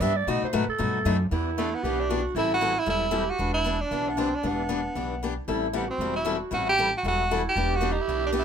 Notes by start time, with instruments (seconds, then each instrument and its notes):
0.00 upright bass G2, steel-string acoustic guitar E3 B3 D4 G4, clarinet E5
0.16 clarinet D5
0.27 upright bass B2, steel-string acoustic guitar B2 F#3 A3 D#4 F#4, clarinet D#5
0.43 clarinet C5, muted upright bass stroke
0.53 upright bass A2, steel-string acoustic guitar B2 F#3 A3 D#4 F#4, clarinet B4
0.68 clarinet A4, muted upright bass stroke
0.78 upright bass G2, steel-string acoustic guitar B2 F#3 A3 D#4 F#4
1.05 upright bass F#2, steel-string acoustic guitar B2 F#3 A3 D#4 F#4
1.31 upright bass E2, steel-string acoustic guitar E3 B3 D4 G4, clarinet E4
1.58 steel-string acoustic guitar E3 B3 D4 G4, tenor saxophone A3
1.75 tenor saxophone B3
1.83 upright bass B1, steel-string acoustic guitar E3 B3 D4 G4, clarinet G4
2.00 tenor saxophone D4
2.10 steel-string acoustic guitar E3 B3 D4 G4, clarinet F#4
2.35 upright bass A1, steel-string acoustic guitar E3 G3 C4 E4 A4, clarinet E4, tenor saxophone E4
2.54 tenor saxophone F#4
2.61 steel-string acoustic guitar E3 G3 C4 E4 A4
2.79 tenor saxophone E4
2.86 upright bass E1, steel-string acoustic guitar E3 G3 C4 E4 A4
2.90 tenor saxophone E4
3.11 steel-string acoustic guitar E3 G3 C4 E4 A4, clarinet G4
3.30 tenor saxophone F#4
3.39 upright bass E1, steel-string acoustic guitar E3 B3 D4 G4, clarinet D4
3.54 tenor saxophone E4
3.64 steel-string acoustic guitar E3 B3 D4 G4
3.81 tenor saxophone D4
3.91 upright bass B1, steel-string acoustic guitar E3 B3 D4 G4
4.09 tenor saxophone B3
4.17 steel-string acoustic guitar E3 B3 D4 G4, tenor saxophone C4
4.35 tenor saxophone D4
4.43 upright bass E1, steel-string acoustic guitar E3 B3 D4 G4, tenor saxophone B3
4.69 steel-string acoustic guitar E3 B3 D4 G4
4.95 upright bass B1, steel-string acoustic guitar E3 B3 D4 G4
5.23 steel-string acoustic guitar E3 B3 D4 G4
5.47 upright bass A1, steel-string acoustic guitar E3 G3 C4 E4 A4, clarinet E4
5.73 steel-string acoustic guitar E3 G3 C4 E4 A4, tenor saxophone B3, clarinet G4
5.88 tenor saxophone C4, clarinet F#4
5.98 upright bass E1, steel-string acoustic guitar E3 G3 C4 E4 A4
6.16 tenor saxophone E4
6.25 steel-string acoustic guitar E3 G3 C4 E4 A4
6.51 upright bass A1, steel-string acoustic guitar E3 G3 C4 E4 A4, tenor saxophone F#4
6.69 tenor saxophone G4
6.78 steel-string acoustic guitar E3 G3 C4 E4 A4
6.97 tenor saxophone F#4
7.03 upright bass E1, steel-string acoustic guitar E3 G3 C4 E4 A4
7.08 tenor saxophone F#4
7.25 clarinet F#4
7.31 steel-string acoustic guitar E3 G3 C4 E4 A4, clarinet E4
7.49 tenor saxophone G4
7.56 upright bass E1, steel-string acoustic guitar E3 B3 D4 G4, clarinet G4
7.76 tenor saxophone F#4
7.81 steel-string acoustic guitar E3 B3 D4 G4
7.92 tenor saxophone D#4
8.01 tenor saxophone E4
8.08 upright bass B1, steel-string acoustic guitar E3 B3 D4 G4
8.27 tenor saxophone D4
8.33 steel-string acoustic guitar E3 B3 D4 G4
8.39 tenor saxophone E4